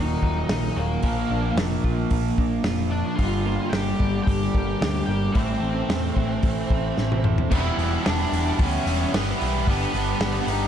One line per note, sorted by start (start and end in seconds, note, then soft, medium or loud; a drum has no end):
0.00 0.14 D#1 medium
0.00 0.23 D#2 medium
0.00 1.01 D#2 medium
0.00 1.02 A#2 medium
0.00 1.03 D#3 medium
0.00 1.04 D#3 medium
0.00 0.21 F#3 medium
0.00 0.50 A#3 medium
0.00 0.46 D#4 medium
0.00 0.47 D#5 medium
0.22 0.41 D#1 medium
0.22 0.76 F#3 medium
0.22 kick medium
0.49 0.68 A#1 loud
0.49 1.58 A#3 medium
0.49 0.75 D#4 medium
0.49 0.78 D#5 loud
0.49 snare loud
0.49 open hi-hat medium
0.76 0.95 D#1 medium
0.76 1.04 F#3 medium
0.76 1.54 A#3 medium
0.76 1.53 A#4 medium
1.02 1.22 A#1 medium
1.02 3.17 A#2 medium
1.02 2.39 A#2 medium
1.02 3.18 F3 medium
1.02 3.19 A#3 medium
1.02 kick loud
1.02 open hi-hat medium
1.31 1.49 A#1 medium
1.31 2.37 D4 medium
1.56 1.75 F1 medium
1.56 2.10 A#3 medium
1.56 snare loud
1.56 open hi-hat medium
1.84 2.03 A#1 medium
1.84 2.64 F4 medium
1.84 kick medium
2.10 2.29 A#1 loud
2.10 3.19 A#3 medium
2.10 kick loud
2.10 open hi-hat medium
2.38 2.56 A#1 medium
2.38 2.91 D4 medium
2.38 kick medium
2.64 3.01 F1 medium
2.64 3.19 F4 medium
2.64 snare loud
2.64 open hi-hat medium
2.91 3.04 D4 medium
2.91 3.19 D4 medium
2.91 3.05 D5 medium
3.06 3.18 D4 medium
3.06 3.15 D5 loud
3.15 3.56 G1 loud
3.15 5.33 G2 medium
3.15 3.69 F4 medium
3.15 3.73 F5 loud
3.15 kick medium
3.15 open hi-hat medium
3.20 4.55 G2 medium
3.20 5.34 D3 loud
3.20 5.35 G3 loud
3.46 4.53 A#3 medium
3.69 3.91 G1 medium
3.69 4.27 G3 medium
3.69 4.22 G5 loud
3.69 snare loud
3.69 open hi-hat medium
3.73 4.24 G4 medium
3.99 4.18 G1 medium
3.99 4.80 D4 medium
3.99 kick medium
4.23 5.02 G5 loud
4.27 4.46 G1 medium
4.27 5.36 G3 medium
4.27 5.05 G4 medium
4.27 kick loud
4.27 open hi-hat medium
4.54 4.73 G1 medium
4.54 5.07 A#3 medium
4.54 kick loud
4.81 5.00 D2 medium
4.81 5.35 D4 medium
4.81 snare loud
4.81 open hi-hat medium
5.06 5.27 G1 loud
5.06 5.35 A#3 medium
5.06 5.35 G5 loud
5.11 5.35 G4 medium
5.32 5.54 A1 loud
5.32 7.49 A2 loud
5.32 6.71 A2 medium
5.32 7.50 E3 medium
5.32 7.19 C5 medium
5.32 kick loud
5.32 open hi-hat medium
5.37 7.50 A3 medium
5.37 7.22 C4 medium
5.62 5.80 A1 medium
5.62 6.70 C4 medium
5.89 6.08 E2 medium
5.89 6.43 A3 medium
5.89 snare loud
5.89 open hi-hat medium
6.16 6.35 A1 medium
6.16 6.97 E4 medium
6.16 kick medium
6.43 6.61 A1 loud
6.43 7.52 A3 medium
6.43 kick loud
6.43 open hi-hat medium
6.70 6.89 A1 medium
6.70 7.23 C4 medium
6.70 kick loud
6.98 7.35 A1 medium
6.98 7.52 E4 medium
6.98 snare medium
7.12 high tom medium
7.24 7.51 C4 medium
7.24 mid tom medium
7.38 floor tom medium
7.51 7.68 E1 loud
7.51 8.05 E2 medium
7.51 8.06 B2 loud
7.51 7.79 E3 loud
7.51 7.80 G3 loud
7.51 7.79 B3 loud
7.51 8.01 E4 medium
7.51 7.77 E4 loud
7.51 8.07 E5 loud
7.51 kick loud
7.51 crash loud
7.78 7.95 E1 medium
7.78 8.05 E3 medium
7.78 8.06 G3 medium
7.78 8.07 B3 medium
7.78 8.07 E4 medium
7.78 open hi-hat medium
8.05 8.24 E1 medium
8.05 8.60 E2 medium
8.05 8.60 B2 medium
8.05 8.35 E3 medium
8.05 8.36 G3 medium
8.05 8.34 B3 medium
8.05 8.55 D4 medium
8.05 8.33 E4 medium
8.05 8.57 D5 loud
8.05 snare loud
8.05 open hi-hat medium
8.33 8.50 E1 medium
8.33 8.59 E3 medium
8.33 8.59 G3 medium
8.33 8.61 B3 medium
8.33 8.60 E4 medium
8.33 open hi-hat medium
8.59 8.76 D2 loud
8.59 9.40 E2 medium
8.59 9.40 B2 medium
8.59 9.11 E3 medium
8.59 9.12 G3 medium
8.59 9.14 B3 loud
8.59 9.11 C#4 medium
8.59 9.14 E4 medium
8.59 kick loud
8.59 open hi-hat medium
8.63 9.11 C#5 loud
8.86 9.03 E1 medium
8.86 9.12 E2 medium
8.86 9.12 B2 medium
8.86 9.15 G3 medium
8.86 9.16 B3 medium
8.86 9.16 E4 medium
8.86 open hi-hat medium
8.90 9.13 E3 medium
9.12 9.31 G1 medium
9.12 9.66 E2 loud
9.12 9.66 B2 medium
9.12 9.42 E3 medium
9.12 9.41 G3 medium
9.12 9.63 B3 medium
9.12 9.41 B3 medium
9.12 9.39 E4 medium
9.12 9.69 B4 loud
9.12 snare loud
9.12 open hi-hat loud
9.40 9.67 B1 medium
9.40 9.67 E3 medium
9.40 9.66 G3 medium
9.40 9.68 B3 medium
9.40 9.65 E4 medium
9.40 open hi-hat medium
9.66 9.84 G1 loud
9.66 10.20 G2 loud
9.66 10.21 D3 medium
9.66 9.95 G3 loud
9.66 10.44 B3 medium
9.66 9.95 B3 loud
9.66 9.93 D4 loud
9.66 9.92 G4 loud
9.66 kick loud
9.66 open hi-hat medium
9.70 10.46 B4 medium
9.93 10.11 G1 medium
9.93 10.17 G3 medium
9.93 10.19 B3 medium
9.93 10.20 D4 medium
9.93 10.20 G4 medium
9.93 open hi-hat medium
10.18 10.38 G1 medium
10.18 10.68 G2 medium
10.18 10.68 D3 medium
10.18 10.49 G3 medium
10.18 10.49 B3 medium
10.18 10.47 D4 medium
10.18 10.46 G4 medium
10.18 snare loud
10.18 open hi-hat loud
10.23 10.49 G3 medium
10.47 10.64 G1 medium
10.47 10.68 G3 medium
10.47 10.68 B3 medium
10.47 10.68 D4 medium
10.47 10.68 D#4 medium
10.47 10.68 G4 medium
10.47 10.68 D#5 medium
10.47 open hi-hat medium